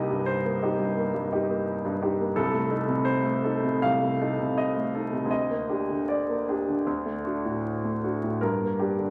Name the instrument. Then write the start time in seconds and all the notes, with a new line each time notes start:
grand piano
Already playing: C2 A#3 D#4 G4 D#5
0.11 G2
0.26 C5
0.45 A#3
0.62 D#4 G4
0.79 G2
0.97 A#3
1.14 G2
1.32 D#4 G4
1.50 A#3
1.85 G2
2.02 D#4 G4
2.20 A#3
2.36 C2 A4
2.54 A3
2.71 D#4 A4
2.88 C3
3.05 C5
3.24 A3
3.44 D#4 A4
3.63 C3
3.82 C2 F5
4.03 A3
4.21 D#4 A4
4.40 C3
4.58 D#5
4.77 A3
4.95 D#4 A4
5.13 C3
5.25 D2
5.31 D#5
5.50 A#3
5.69 D4 G4
5.90 D3
6.08 D5
6.29 A#3
6.48 D4 G4
6.68 D3
6.86 D2
7.06 A3
7.25 D4 F#4
7.45 A2
7.84 A3
8.04 D4 F#4
8.23 A2
8.41 G2 A#4
8.61 A#3
8.79 D4 G4
8.98 D3